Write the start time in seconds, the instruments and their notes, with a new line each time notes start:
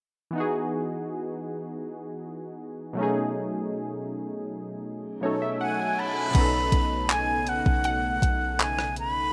0.31 synth keys E3 B3
0.35 synth keys D#4 F#4
0.40 synth keys G#4
2.93 synth keys B2 F#3 A3
2.99 synth keys C#4 D#4 G#4
4.85 reverse cymbal
5.21 synth keys B2 F#3 A3 C#4 D#4 C#5
5.25 synth keys A4
5.42 synth keys E5
5.61 synth keys F#5, flute G#5
5.80 synth keys G#5
5.99 synth keys A5, flute B5
6.31 808-style bass B1, synth keys B2 B3, analog synth pad C#3, kick, closed hi-hat, crash
6.35 analog synth pad A3 D#4, synth keys C#4 D#4
6.40 synth keys A4
6.72 808-style bass B1, kick, closed hi-hat
7.09 synth pluck G#5, flute G#5, clap, closed hi-hat
7.47 flute F#5, closed hi-hat
7.66 808-style bass B1, kick
7.84 synth pluck F#5, closed hi-hat
8.22 808-style bass B1, kick, closed hi-hat
8.60 flute G#5, clap, closed hi-hat
8.79 cross-stick
8.96 flute B5, closed hi-hat